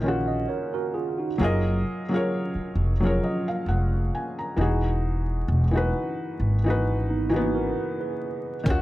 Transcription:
Already playing: upright bass A#1, felt piano C#4 F4 G#4
0.00 felt piano D#3 C#4
0.06 felt piano F4 F#4
0.28 tine electric piano D#5
0.49 tine electric piano A#4 C#5
0.74 tine electric piano F#4 A#4
0.94 tine electric piano F4 G#4
1.18 tine electric piano D#4 F#4
1.38 upright bass F#1, felt piano F#3 F4 G#4
1.43 felt piano A#4 D#5
2.09 felt piano F#3 F4 G#4
2.14 felt piano A#4 C#5
2.55 muted upright bass stroke
2.75 upright bass F1
3.00 felt piano F3 F#3 G#4
3.05 felt piano A#4 C#5
3.24 felt piano D#5
3.48 felt piano F5
3.66 upright bass F1, felt piano F#5
4.15 felt piano G#5
4.39 felt piano A#5
4.56 upright bass E1, felt piano E3 D#4
4.61 felt piano F#4 G#4
5.48 upright bass E1
5.71 felt piano E3 D#4
5.76 felt piano F#4 B4
6.40 upright bass G#1
6.64 felt piano E3 D#4 F#4
6.70 felt piano B4
7.10 tine electric piano B3 D#4
7.29 felt piano E3 D#4, tine electric piano D#4 F#4
7.34 felt piano B3 F#4
7.55 tine electric piano F#4 A#4
8.01 tine electric piano G#4 B4
8.64 upright bass D#2, felt piano D#3 C#4, kick, closed hi-hat
8.68 felt piano F4 F#4

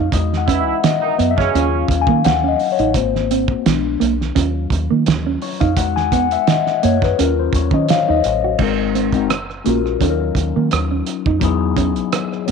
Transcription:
Already playing: fingered electric bass F2, tine electric piano F#3 C#4 F4 C5 C#5 F5
0.12 fingered electric bass E2, tine electric piano G#3 D#4 F#4 D#5, kick, closed hi-hat
0.33 snare
0.37 tine electric piano F#5
0.47 horn section E3 E4, clean electric guitar C#4, kick, closed hi-hat
0.61 tine electric piano E5
0.84 tine electric piano D#5, snare, closed hi-hat
1.01 horn section D#3 D#4
1.19 fingered electric bass F#2, clean electric guitar B3, closed hi-hat
1.31 tine electric piano E5
1.37 horn section C#3 C#4, kick, snare
1.54 fingered electric bass D#2, tine electric piano F#3 C#4 F4 F5, clean electric guitar C#4, closed hi-hat
1.88 fingered electric bass D#2, muted clean electric guitar stroke, kick, closed hi-hat
2.01 tine electric piano G#5
2.07 fingered electric bass D#3, clean electric guitar A#3, kick
2.24 fingered electric bass D#2, tine electric piano F#5, snare, closed hi-hat
2.44 clean electric guitar C#4
2.48 tine electric piano D#5
2.59 muted clean electric guitar stroke, open hi-hat
2.72 tine electric piano C#5
2.79 fingered electric bass A1, clean electric guitar D#4, closed hi-hat
2.94 fingered electric bass G#1, tine electric piano A#3 C4 F#4 C5, kick, closed hi-hat
3.15 snare
3.31 clean electric guitar C4, closed hi-hat
3.48 kick
3.66 fingered electric bass A#1, tine electric piano G#3 B3 D4, snare, closed hi-hat
4.00 fingered electric bass B1, clean electric guitar A#3, closed hi-hat
4.21 snare
4.35 fingered electric bass D#2, tine electric piano F#3 C#4 F4, clean electric guitar C#4, kick, closed hi-hat
4.70 fingered electric bass D#2, muted clean electric guitar stroke, kick, closed hi-hat
4.91 fingered electric bass D#3, clean electric guitar A#3
5.06 fingered electric bass D#2, snare, closed hi-hat
5.27 clean electric guitar C#4
5.42 tine electric piano C#5, muted clean electric guitar stroke, open hi-hat
5.60 fingered electric bass F2, clean electric guitar D#4, tine electric piano F5, kick, closed hi-hat
5.76 fingered electric bass E2, tine electric piano G#3 D#4 F#4 F#5, kick, closed hi-hat
5.96 tine electric piano G#5, snare
6.12 clean electric guitar B3, tine electric piano F#5, kick, closed hi-hat
6.31 tine electric piano E5, closed hi-hat
6.47 tine electric piano D#5, snare, closed hi-hat
6.66 snare
6.83 fingered electric bass F#2, clean electric guitar A#3, tine electric piano C#5, closed hi-hat
7.02 tine electric piano B4, kick, snare
7.19 fingered electric bass D#2, tine electric piano F#3 C#4 F4 A#4, clean electric guitar C#4, closed hi-hat
7.39 tine electric piano C5
7.53 fingered electric bass D#2, tine electric piano C#5, muted clean electric guitar stroke, kick, closed hi-hat
7.71 fingered electric bass D#3, clean electric guitar C#4, tine electric piano D#5, kick
7.88 tine electric piano F5, snare, closed hi-hat
8.09 fingered electric bass D#2, clean electric guitar D#4, tine electric piano D#5
8.24 fingered electric bass A1, muted clean electric guitar stroke, closed hi-hat
8.44 clean electric guitar F#4
8.58 fingered electric bass G#1, tine electric piano G#3 C4 D#4 F#4, kick, crash
8.63 tine electric piano A#4
8.95 clean electric guitar C4, closed hi-hat
9.12 tine electric piano G#3 C4 D#4 F#4, kick, closed hi-hat
9.17 tine electric piano A#4
9.30 fingered electric bass F#1, cross-stick, closed hi-hat
9.50 cross-stick
9.64 fingered electric bass A#1, tine electric piano G#3 C#4 F4 F#4, clean electric guitar A#3, closed hi-hat
9.69 tine electric piano A#4
9.86 cross-stick
9.99 fingered electric bass D#2, tine electric piano F#3 C#4 D#4 F4, clean electric guitar C#4, kick, closed hi-hat
10.04 tine electric piano A4
10.10 tine electric piano A#4
10.35 fingered electric bass D#2, muted clean electric guitar stroke, kick, closed hi-hat
10.56 fingered electric bass D#3, clean electric guitar A#3
10.71 fingered electric bass D#2, cross-stick, closed hi-hat
10.91 clean electric guitar C#4
11.07 muted clean electric guitar stroke, closed hi-hat
11.26 fingered electric bass F2, clean electric guitar D#4, kick
11.40 fingered electric bass E2, tine electric piano F#3 B3 D#4 E4, kick, closed hi-hat
11.44 tine electric piano G#4
11.77 clean electric guitar C#4, kick, closed hi-hat
11.96 closed hi-hat
12.12 cross-stick, closed hi-hat
12.32 cross-stick
12.46 tine electric piano F#3 B3, clean electric guitar B3, closed hi-hat

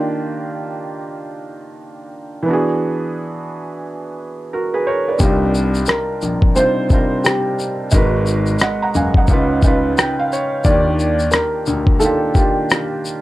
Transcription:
Already playing: felt piano D#3 A#3 D4 F4 G4
2.43 felt piano E3 B3
2.48 felt piano D4 F#4
2.53 felt piano G#4
4.53 felt piano F#4 A#4
4.74 felt piano G#4 B4
4.87 felt piano A#4 C#5
5.08 felt piano B4 D5
5.18 grand piano C2, felt piano C3 G3 D4 D#4 F4, upright piano G4, kick, shaker
5.23 felt piano A#4
5.55 shaker
5.74 shaker
5.86 upright piano A#4, cross-stick, shaker
6.22 grand piano A#1, shaker
6.42 kick
6.55 felt piano C3 G3 D4 D#4, upright piano C5, shaker
6.59 felt piano F4 C5
6.89 felt piano C3 G3 D4 D#4 F4, kick, shaker
6.94 felt piano A#4
7.24 upright piano G4, cross-stick, shaker
7.59 shaker
7.91 grand piano G#1, felt piano G#3 D#4 F#4 A#4, kick, shaker
7.96 felt piano B4
8.26 shaker
8.46 shaker
8.59 felt piano D#5 F#5, cross-stick, shaker
8.82 felt piano F#5 A#5
8.95 grand piano F#1, felt piano F5 G#5, shaker
9.14 felt piano D#5 F#5, kick
9.28 grand piano C#2, felt piano C#3 C#4 D#4 F4, kick, shaker
9.33 felt piano B4
9.62 felt piano C#3 C#4 D#4 F4, kick, shaker
9.67 felt piano B4
9.98 felt piano G5, cross-stick, shaker
10.19 felt piano F5
10.32 felt piano C#5, shaker
10.64 grand piano D#2, felt piano D#3 A#3 D4 F4, upright piano D5, kick, shaker
10.69 felt piano G4
10.99 shaker
11.19 shaker
11.31 upright piano A#4, cross-stick, shaker
11.66 grand piano D2, shaker
11.87 kick
12.00 felt piano D#3 A#3 D4, upright piano A4, shaker
12.04 felt piano F4 G4
12.34 felt piano D#3 A#3 D4, upright piano G4, kick, shaker
12.38 felt piano F4 G4
12.70 cross-stick, shaker
13.05 shaker

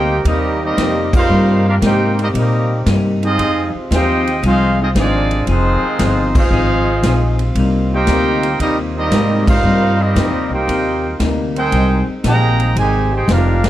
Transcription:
Already playing: upright bass D2, hollow-body jazz guitar C3 G3 A#3 D#4, saxophone section C3 A#3 C4 G4, trombone section A#3 D#4 G4, trumpet section D#4 A#4 C5 G5
0.25 upright bass D#2, hollow-body jazz guitar C3 G3 A#3 D#4, trombone section G3 A#3 D#4, trumpet section C4 G4 A#4 D#5, kick, ride
0.62 trombone section G3 A#3 D#4, trumpet section C4 G4 A#4 D#5
0.77 upright bass F2, hollow-body jazz guitar C3 G3 A#3 D#4, kick, snare, hi-hat pedal, ride
1.13 trombone section G3 A#3 F4, trumpet section D#4 A#4 C5 F5, kick, crash
1.29 upright bass G2, hollow-body jazz guitar C3 G3 A#3 D#4
1.67 trumpet section D4 G4 A#4 F5, trombone section F4
1.81 upright bass G#2, hollow-body jazz guitar C3 G3 A#3 D#4, trombone section A#3 D#4 G4, kick, snare, hi-hat pedal, ride
1.85 trumpet section D#4 A#4 C5 G5
2.19 trombone section G3 A#3 D#4, trumpet section C4 G4 A#4 D#5, ride
2.34 upright bass A#2, hollow-body jazz guitar C3 G3 A#3 D#4, trombone section G3 A#3 D#4, kick, ride
2.38 trumpet section C4 G4 A#4 D#5
2.86 upright bass G2, hollow-body jazz guitar C3 G3 A#3 D#4, kick, snare, hi-hat pedal, ride
3.23 trombone section G#3 C4 D#4, trumpet section C4 F4 G#4 D#5, ride
3.38 upright bass F2, hollow-body jazz guitar F3 C4 D#4 G#4, saxophone section G#3 F4, kick, ride
3.74 muted upright bass stroke
3.91 upright bass D#2, hollow-body jazz guitar F3 C4 D#4 G#4, trombone section C4 D#4 G4, trumpet section F4 C5 D#5 G5, kick, snare, hi-hat pedal, ride
4.27 ride
4.43 upright bass C2, hollow-body jazz guitar F3 C4 D#4 G#4, trombone section G#3 C4 F4, trumpet section D#4 G#4, kick, ride
4.47 trumpet section C5 F5
4.81 trombone section G#3 C4 D#4, trumpet section C4 F4 G#4 D#5
4.95 upright bass G#1, trombone section D#3 G#3 D4, hollow-body jazz guitar F3 C4 D#4 G#4, trumpet section C4 F4 G#4 D5, kick, snare, hi-hat pedal, ride
5.31 ride
5.46 upright bass F1, trombone section D#3 G#3 C4, hollow-body jazz guitar F3 C4 D#4 G#4, trumpet section G#3 D#4 F4 C5, saxophone section F4, kick, ride
5.82 muted upright bass stroke
5.99 upright bass G1, hollow-body jazz guitar F3 C4 D#4 G#4, kick, snare, hi-hat pedal, ride
6.35 trombone section G#3 C4 F4, trumpet section D#4 G#4 C5 F5, kick, crash
6.50 upright bass G#1, hollow-body jazz guitar F3 C4 D#4 G#4
7.03 upright bass A#1, hollow-body jazz guitar F3 C4 D#4 G#4, kick, snare, hi-hat pedal, ride
7.39 ride
7.55 upright bass C2, hollow-body jazz guitar C3 G3 A#3 D#4, saxophone section A#3 D#4, kick, ride
7.93 trombone section A#3 D#4 G4, trumpet section D#4 A#4 C5 G5
8.07 upright bass D2, hollow-body jazz guitar C3 G3 A#3 D#4, kick, snare, hi-hat pedal, ride
8.43 ride
8.59 upright bass D#2, hollow-body jazz guitar C3 G3 A#3 D#4, trombone section G3 A#3 D#4, trumpet section C4 G4 A#4 D#5, kick, ride
8.97 trombone section G3 A#3 D#4, trumpet section C4 G4 A#4 D#5
9.11 upright bass G#2, hollow-body jazz guitar C3 G3 A#3 D#4, kick, snare, hi-hat pedal, ride
9.47 trombone section G3 A#3 F4, trumpet section D#4 A#4 C5 F5, kick, crash
9.63 upright bass G2, hollow-body jazz guitar C3 G3 A#3 D#4, saxophone section F4
10.00 trombone section G3 A#3 D#4, trumpet section C4 G4 A#4 D#5
10.14 upright bass F2, hollow-body jazz guitar C3 G3 A#3 D#4, kick, snare, hi-hat pedal, ride
10.32 upright bass D#2
10.50 upright bass C2, trombone section A#3 D#4 G4, trumpet section D#4 A#4 C5 G5
10.67 upright bass D#2, hollow-body jazz guitar C3 G3 A#3 D#4, kick, ride
11.19 upright bass D2, hollow-body jazz guitar C3 G3 A#3 D#4, kick, snare, hi-hat pedal, ride
11.56 trombone section C4 D#4 A#4, trumpet section D#4 G#4 C5 G5, ride
11.71 upright bass C2, hollow-body jazz guitar G#2 G3 C4 D#4, saxophone section G#3 C4, kick, ride
12.23 upright bass A#1, hollow-body jazz guitar G#2 G3 C4 D#4, trombone section D#3 G#3 A#3, trumpet section G#4 D#5 G5 A#5, kick, snare, hi-hat pedal, ride
12.60 ride
12.75 upright bass G#1, hollow-body jazz guitar G#2 G3 C4 D#4, trombone section C3 D#3 G#3, trumpet section D#4 C5 G#5, kick, ride
12.79 trumpet section G4
13.12 trombone section C4 D#4 G4, trumpet section D#4 G#4 C5 G5
13.27 upright bass F1, hollow-body jazz guitar G#2 G3 C4 D#4, trombone section F4, kick, snare, hi-hat pedal, ride
13.32 trumpet section D4 G4 A#4 F5
13.64 trombone section B3 D4 G4, snare, ride

